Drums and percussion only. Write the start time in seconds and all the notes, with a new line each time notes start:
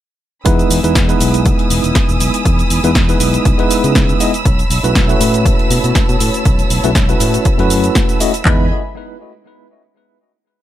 0.46 kick, closed hi-hat, cabasa
0.59 closed hi-hat, cabasa
0.71 open hi-hat, cabasa
0.84 closed hi-hat, cabasa
0.95 kick, snare, closed hi-hat, cabasa
1.09 closed hi-hat, cabasa
1.20 open hi-hat, cabasa
1.34 closed hi-hat, cabasa
1.46 kick, closed hi-hat, cabasa
1.59 closed hi-hat
1.70 open hi-hat, cabasa
1.84 closed hi-hat, cabasa
1.95 kick, snare, closed hi-hat, cabasa
2.09 closed hi-hat, cabasa
2.20 open hi-hat, cabasa
2.34 closed hi-hat, cabasa
2.45 kick, closed hi-hat, cabasa
2.59 closed hi-hat, cabasa
2.70 open hi-hat, cabasa
2.84 closed hi-hat, cabasa
2.95 kick, snare, closed hi-hat, cabasa
3.09 closed hi-hat, cabasa
3.20 open hi-hat, cabasa
3.34 closed hi-hat, cabasa
3.45 kick, closed hi-hat, cabasa
3.59 closed hi-hat
3.71 open hi-hat, cabasa
3.84 closed hi-hat, cabasa
3.95 kick, snare, closed hi-hat, cabasa
4.09 closed hi-hat, cabasa
4.20 open hi-hat, cabasa
4.34 closed hi-hat, cabasa
4.45 kick, closed hi-hat, cabasa
4.59 closed hi-hat, cabasa
4.70 open hi-hat, cabasa
4.84 closed hi-hat, cabasa
4.95 kick, snare, closed hi-hat, cabasa
5.09 closed hi-hat, cabasa
5.21 open hi-hat, cabasa
5.34 closed hi-hat, cabasa
5.46 kick, closed hi-hat, cabasa
5.59 closed hi-hat
5.71 open hi-hat, cabasa
5.84 closed hi-hat, cabasa
5.95 kick, snare, closed hi-hat, cabasa
6.09 closed hi-hat, cabasa
6.20 open hi-hat, cabasa
6.34 closed hi-hat, cabasa
6.45 kick, closed hi-hat, cabasa
6.59 closed hi-hat, cabasa
6.70 open hi-hat, cabasa
6.84 closed hi-hat, cabasa
6.95 kick, snare, closed hi-hat, cabasa
7.09 closed hi-hat, cabasa
7.20 open hi-hat, cabasa
7.34 closed hi-hat, cabasa
7.45 kick, closed hi-hat, cabasa
7.59 closed hi-hat
7.70 open hi-hat, cabasa
7.84 closed hi-hat, cabasa
7.95 kick, snare, closed hi-hat, cabasa
8.09 closed hi-hat, cabasa
8.20 open hi-hat, cabasa
8.34 closed hi-hat, cabasa
8.45 kick, clap